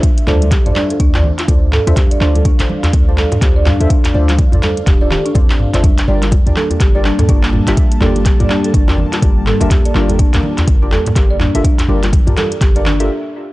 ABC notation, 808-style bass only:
X:1
M:4/4
L:1/16
Q:"Swing 16ths" 1/4=124
K:Gdor
V:1 name="808-style bass" clef=bass
z2 D,,2 z A,,, z2 D,,2 z2 D,,2 z D,, | z2 D,,2 z A,,, z2 D,,2 z2 D,,2 z D,, | z2 D,,2 z A,,, z2 D,,,2 z2 A,,,2 z G,,,- | G,,, z G,,,2 z D,, z2 G,,,2 z2 G,,,2 z G,,, |
z2 G,,,2 z D,, z2 G,,,2 z2 G,,,2 z G,,, | z2 G,,,2 z D,, z2 G,,,2 z2 G,,,2 z G,,, | z2 G,,,2 z D,, z2 G,,,4 z4 |]